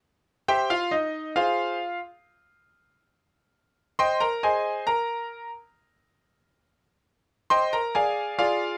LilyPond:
\new Staff \with { instrumentName = "Grand piano" } { \time 4/4 \key c \minor \tempo 4 = 136 r4 <g' c'' e'' g''>8 <f' f''>8 <ees' ees''>4 <f' aes' c'' f''>4~ | <f' aes' c'' f''>8 r2. r8 | r4 <c'' ees'' g'' c'''>8 <bes' bes''>8 <aes' c'' ees'' aes''>4 <bes' bes''>4~ | <bes' bes''>8 r2. r8 |
r4 <c'' ees'' g'' c'''>8 <bes' bes''>8 <aes' d'' f'' aes''>4 <f' aes' d'' f''>4 | }